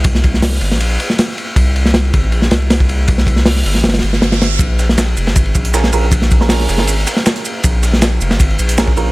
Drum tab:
RD |x---x-------x---x---x---x---x---|x---x---x-x-x---x---x-x-x---x---|x---x-------x---xxxxx---x-x-x-x-|x---x---x-x-x---x-x-x---x---x---|
HH |--------o-----------------------|--------------------------------|--------o-----------------------|----------------------x---------|
SH |--------------------------------|--------------------------------|--------------------------------|x---x---x---x---x---x---x---x---|
SD |--o---o-o-o---o-------o-o-o-----|------o-o---------o-o---o-------|--o---o-o-o---o-oooo--o-o-o-o---|----o-o-o-----o---------o-o-----|
BD |o---o---------------------------|o-----------o-------------o-----|o---o---------------------------|o---------------o---o-----------|

RD |x---x-------x---x---x---x---x---|x---x---x-x-x---x-x-x---x---x---|
HH |--------o-----------------x-----|----------------------x---------|
SH |x---x---x---x---x---x---x---x---|x---x---x---x---x---x---x---x---|
SD |--o---o-o-o-o-o-----o-o-o-o-----|----o-o-o-----o---------o-o-----|
BD |o---o---------------------------|o---------------o---------o-----|